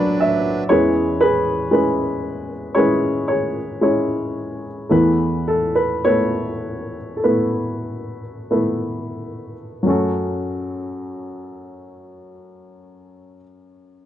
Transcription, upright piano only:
0.00 0.64 B1 medium
0.00 0.64 B2 medium
0.00 0.70 F#3 medium
0.00 0.70 D4 medium
0.00 0.70 B4 medium
0.00 0.70 D5 medium
0.00 0.15 F#5 medium
0.20 0.66 E5 medium
0.69 4.88 E2 medium
0.69 4.88 E3 medium
0.69 1.47 G#3 medium
0.69 1.47 C#4 medium
0.69 1.48 E4 medium
0.69 1.21 G#4 medium
0.69 1.19 B4 medium
0.69 1.21 C#5 medium
1.21 2.76 G#4 medium
1.21 1.71 B4 medium
1.71 2.50 G#3 medium
1.71 2.50 C#4 soft
1.71 2.51 E4 medium
1.71 2.51 B4 medium
2.75 3.56 G#3 medium
2.75 3.56 C#4 medium
2.75 3.56 E4 medium
2.75 3.30 G#4 medium
2.75 3.57 B4 medium
2.75 3.26 C#5 medium
3.28 4.89 G#4 soft
3.28 3.81 C#5 medium
3.81 4.64 G#3 medium
3.81 4.65 C#4 medium
3.81 4.65 E4 medium
3.81 4.65 C#5 medium
4.89 9.83 E2 soft
4.89 9.83 E3 medium
4.89 5.77 A3 medium
4.89 5.77 B3 medium
4.89 5.77 E4 medium
4.89 5.44 B4 medium
5.48 5.77 A4 medium
5.75 6.04 B4 medium
6.05 6.95 A3 medium
6.05 6.96 B3 soft
6.05 6.07 E4 soft
6.05 7.15 A4 medium
6.05 6.96 B4 medium
6.05 7.19 C#5 medium
6.09 7.24 E4 medium
7.17 7.25 A4 soft
7.24 8.20 A3 medium
7.24 8.20 B3 soft
7.24 8.21 E4 soft
7.24 8.50 B4 medium
8.51 9.53 A3 medium
8.51 9.53 B3 soft
8.51 9.54 E4 soft
8.51 9.54 B4 medium
9.83 13.38 F#2 medium
9.83 13.35 F#3 medium
9.83 13.37 A3 medium
9.87 13.39 C#4 medium
9.87 13.41 F#4 medium
9.87 13.42 A4 medium

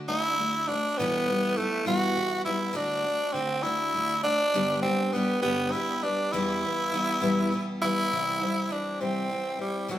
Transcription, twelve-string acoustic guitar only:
0.08 0.38 D3 medium
0.08 0.38 A3 medium
0.08 0.38 D4 medium
0.08 0.38 F#4 medium
0.39 0.68 D3 soft
0.39 0.68 A3 medium
0.39 0.69 D4 medium
0.39 0.67 F#4 medium
0.68 0.99 A3 soft
0.68 0.99 D4 soft
0.68 0.98 F#4 medium
0.99 1.28 E2 medium
0.99 1.28 B2 medium
0.99 1.28 E3 medium
0.99 1.28 G3 medium
0.99 1.27 B3 medium
0.99 1.27 E4 loud
1.28 1.56 E3 soft
1.28 1.56 G3 soft
1.28 1.57 B3 medium
1.28 1.57 E4 soft
1.57 1.86 E3 medium
1.57 1.85 G3 medium
1.57 1.85 B3 medium
1.57 1.84 E4 medium
1.86 2.16 E2 medium
1.86 2.16 B2 medium
1.86 2.15 E3 medium
1.86 2.16 G3 medium
1.86 2.16 B3 medium
1.86 2.16 E4 medium
2.16 2.46 E3 medium
2.16 2.46 G3 medium
2.16 2.45 B3 medium
2.16 2.44 E4 medium
2.45 2.72 E3 soft
2.45 2.73 G3 soft
2.45 2.74 B3 medium
2.45 2.75 E4 medium
2.73 3.04 D3 medium
2.73 3.04 A3 medium
2.73 3.03 D4 loud
2.73 3.03 F#4 medium
3.04 3.34 A3 soft
3.04 3.34 D4 soft
3.04 3.34 F#4 soft
3.34 3.64 D3 medium
3.34 3.64 A3 medium
3.34 3.64 D4 medium
3.34 3.62 F#4 medium
3.63 3.93 D3 medium
3.63 3.93 A3 medium
3.63 3.94 D4 medium
3.63 3.94 F#4 medium
3.94 4.24 D3 medium
3.94 4.24 A3 medium
3.94 4.25 D4 medium
3.94 4.24 F#4 medium
4.25 4.55 A3 soft
4.25 4.55 D4 medium
4.25 4.54 F#4 medium
4.54 4.84 G2 medium
4.54 4.84 D3 medium
4.54 4.84 G3 medium
4.54 4.84 B3 medium
4.54 4.84 D4 medium
4.54 4.83 G4 medium
4.84 5.12 G3 soft
4.84 5.13 B3 soft
4.84 5.14 D4 medium
4.84 5.13 G4 medium
5.13 5.42 G3 medium
5.13 5.43 B3 medium
5.13 5.42 D4 medium
5.13 5.41 G4 medium
5.42 5.74 G2 medium
5.42 5.73 D3 medium
5.42 5.71 G3 medium
5.42 5.72 B3 medium
5.42 5.72 D4 medium
5.42 5.72 G4 medium
5.72 6.02 G3 medium
5.72 6.03 B3 medium
5.72 6.02 D4 medium
5.72 6.01 G4 medium
6.02 6.33 G3 soft
6.02 6.33 B3 medium
6.02 6.33 D4 soft
6.02 6.32 G4 medium
6.33 6.62 E2 medium
6.33 6.63 B2 medium
6.33 6.63 E3 medium
6.33 6.63 G3 medium
6.33 6.63 B3 medium
6.33 6.63 E4 medium
6.64 6.91 E3 soft
6.64 6.92 G3 soft
6.64 6.93 B3 medium
6.64 6.93 E4 medium
6.92 7.22 E3 medium
6.92 7.21 G3 medium
6.92 7.21 B3 medium
6.92 7.20 E4 medium
7.21 7.52 E2 medium
7.21 7.52 B2 medium
7.21 7.50 E3 medium
7.21 7.51 G3 medium
7.21 7.51 B3 medium
7.21 7.51 E4 medium
7.51 7.81 E3 medium
7.51 7.82 G3 medium
7.51 7.82 B3 medium
7.51 7.82 E4 medium
7.83 8.12 E3 soft
7.83 8.12 G3 medium
7.83 8.12 B3 medium
7.83 8.12 E4 medium
8.12 8.41 C3 medium
8.12 8.42 E3 medium
8.12 8.42 G3 medium
8.12 8.41 C4 medium
8.12 8.39 E4 medium
8.40 8.70 G3 soft
8.40 8.70 C4 soft
8.40 8.70 E4 soft
8.70 9.00 E3 medium
8.70 9.00 G3 medium
8.70 9.00 C4 medium
8.70 8.99 E4 medium
9.01 9.31 C3 soft
9.01 9.28 E3 medium
9.01 9.28 G3 medium
9.01 9.30 C4 medium
9.01 9.30 E4 medium
9.30 9.59 E3 medium
9.30 9.59 G3 soft
9.30 9.58 C4 medium
9.30 9.58 E4 medium
9.59 9.88 G3 soft
9.59 9.89 C4 soft
9.59 9.89 E4 soft
9.88 9.99 E2 medium
9.88 9.99 B2 medium
9.88 9.99 E3 medium
9.88 9.99 G3 medium
9.88 9.99 B3 medium
9.88 9.99 E4 medium

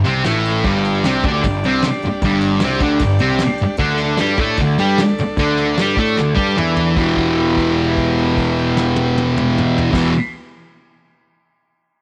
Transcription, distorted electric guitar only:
0.04 0.25 C3 medium
0.04 0.26 C4 loud
0.25 0.64 A2 medium
0.25 0.65 A3 loud
0.64 1.04 G2 medium
0.64 1.04 G3 loud
1.05 1.24 C3 medium
1.05 1.25 C4 loud
1.25 1.44 D3 loud
1.25 1.44 D4 loud
1.44 1.60 G2 medium
1.65 1.84 C3 medium
1.65 1.85 C4 loud
1.85 muted distorted electric guitar stroke medium
2.05 muted distorted electric guitar stroke medium
2.24 2.63 G2 loud
2.24 2.63 G3 loud
2.63 2.81 C3 loud
2.63 2.82 C4 loud
2.81 3.01 D3 medium
2.81 3.02 D4 loud
3.02 3.18 G2 medium
3.20 3.40 C3 medium
3.20 3.41 C4 loud
3.42 muted distorted electric guitar stroke medium
3.62 muted distorted electric guitar stroke medium
3.78 4.19 D3 medium
3.78 4.19 D4 loud
4.20 4.39 G3 medium
4.20 4.40 G4 loud
4.40 4.59 A3 medium
4.40 4.60 A4 loud
4.58 4.75 D3 medium
4.79 4.99 G3 medium
4.79 4.99 G4 loud
5.00 muted distorted electric guitar stroke medium
5.20 muted distorted electric guitar stroke medium
5.39 5.78 D3 medium
5.39 5.79 D4 loud
5.81 5.98 G3 medium
5.81 5.99 G4 loud
5.99 6.18 A3 medium
5.99 6.19 A4 loud
6.17 6.34 D3 medium
6.35 6.56 G3 loud
6.35 6.57 G4 loud
6.56 6.97 E3 loud
6.56 6.97 E4 loud
6.95 9.91 E2 medium
6.95 9.93 B2 medium
6.95 9.96 E3 loud
9.91 10.10 E2 medium
9.91 10.11 B2 loud
9.96 10.12 E3 loud

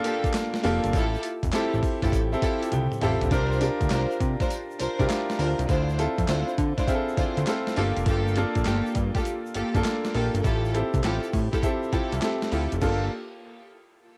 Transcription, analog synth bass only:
0.65 0.80 F1 medium
0.84 0.92 G1 medium
0.94 1.17 A1 loud
1.43 1.51 F1 medium
1.74 1.81 A1 medium
2.03 2.10 G1 medium
2.12 2.36 A1 medium
2.73 2.88 C2 loud
3.03 3.18 A1 medium
3.22 3.30 A#1 loud
3.31 3.70 C2 loud
3.81 3.88 D2 medium
3.91 4.06 C2 medium
4.21 4.36 C3 medium
4.80 4.88 C2 medium
5.00 5.07 C2 medium
5.39 5.55 D2 medium
5.59 5.67 C2 medium
5.69 6.07 D2 loud
6.18 6.26 F2 medium
6.29 6.44 D2 loud
6.58 6.74 D3 medium
7.18 7.25 D2 soft
7.37 7.45 D2 medium
7.77 7.93 G1 loud
7.97 8.05 F1 medium
8.06 8.45 G1 loud
8.56 8.64 A#1 medium
8.67 8.82 G1 loud
8.96 9.11 G2 medium
9.55 9.63 G1 medium
9.75 9.83 G1 medium
10.15 10.30 A#1 medium
10.34 10.42 G1 loud
10.45 10.83 A1 loud
10.94 11.01 C2 medium
11.04 11.19 A1 loud
11.34 11.49 A2 medium
11.93 12.01 C2 soft
12.13 12.20 C2 medium
12.52 12.68 D2 medium
12.72 12.80 F1 medium
12.82 13.09 G1 medium

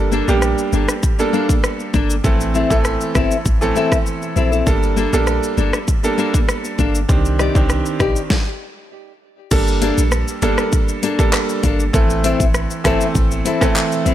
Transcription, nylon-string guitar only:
0.12 0.32 A#3 medium
0.12 0.32 D4 medium
0.12 0.33 A4 medium
0.72 0.92 A#3 medium
0.72 0.93 D4 medium
0.72 0.93 A4 medium
1.33 1.53 A#3 medium
1.33 1.53 D4 medium
1.33 1.54 A4 medium
1.94 2.14 A#3 medium
1.94 2.14 D4 medium
1.94 2.14 A4 loud
2.54 2.74 C4 medium
2.54 2.75 E4 medium
2.54 2.75 A4 medium
3.15 3.35 C4 medium
3.15 3.35 E4 medium
3.15 3.36 A4 medium
3.75 3.95 C4 medium
3.75 3.96 E4 medium
3.75 3.96 A4 medium
4.36 4.52 C4 medium
4.36 4.52 E4 medium
4.36 4.51 A4 medium
4.52 4.67 C4 medium
4.52 4.67 E4 medium
4.52 4.66 A4 medium
4.96 5.16 A#3 medium
4.96 5.17 D4 medium
4.96 5.17 A4 loud
5.57 5.77 A#3 medium
5.57 5.78 D4 medium
5.57 5.78 A4 loud
6.18 6.38 A#3 medium
6.18 6.38 D4 medium
6.18 6.39 A4 medium
6.78 6.98 A#3 medium
6.78 6.99 D4 medium
6.78 6.99 A4 medium
7.39 7.59 D#4 medium
7.39 7.59 G4 medium
7.39 7.60 D5 medium
7.99 8.19 D#4 medium
7.99 8.20 G4 medium
7.99 8.20 D5 medium
9.81 10.01 A#3 medium
9.81 10.02 D4 medium
9.81 10.02 A4 medium
10.42 10.62 A#3 loud
10.42 10.62 D4 loud
10.42 10.63 A4 loud
11.03 11.23 A#3 medium
11.03 11.23 D4 medium
11.03 11.23 A4 loud
11.63 11.83 A#3 medium
11.63 11.84 D4 medium
11.63 11.84 A4 medium
12.24 12.44 C4 medium
12.24 12.44 E4 medium
12.24 12.45 A4 medium
12.84 13.04 C4 medium
12.84 13.05 E4 medium
12.84 13.05 A4 loud
13.45 13.65 C4 medium
13.45 13.66 E4 medium
13.45 13.66 A4 medium
14.06 14.14 C4 medium
14.06 14.14 E4 medium
14.06 14.14 A4 medium

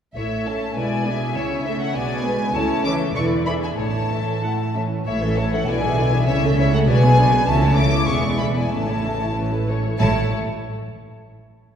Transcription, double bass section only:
0.16 0.73 A1 soft
0.77 1.32 B1 soft
1.36 1.91 C#2 soft
1.95 2.50 B1 soft
2.54 3.11 C#2 soft
3.16 3.75 E1 medium
3.79 4.39 A1 soft
5.07 5.64 A1 soft
5.68 6.28 B1 medium
6.29 6.88 C#2 medium
6.88 7.47 B1 medium
7.48 8.07 C#2 medium
8.09 8.72 E1 medium
8.72 9.77 A1 soft
10.00 10.35 A1 medium

